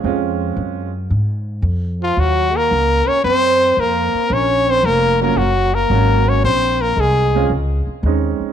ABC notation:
X:1
M:4/4
L:1/8
Q:"Swing" 1/4=113
K:Bbm
V:1 name="Trumpet"
z6 z F | G B2 d c2 B2 | d c B B G B2 d | c B A2 z4 |]
V:2 name="Grand piano"
[A,CDF]3 z4 z | z8 | z3 [G,B,DF] z2 [G,B,DG]2 | z3 [A,CDF] z2 [A,CDE]2 |]
V:3 name="Trombone"
z6 z F, | G, B,2 D C2 B,2 | D C B, B, G, B,2 D | C B, A,2 z4 |]
V:4 name="Upright bass" clef=bass
F,,2 G,,2 A,,2 F,,2 | E,,2 D,, z G,,2 F,, z | B,,,2 F,,,2 G,,,2 A,,,2 | B,,,2 C,,2 D,, z E,, z |]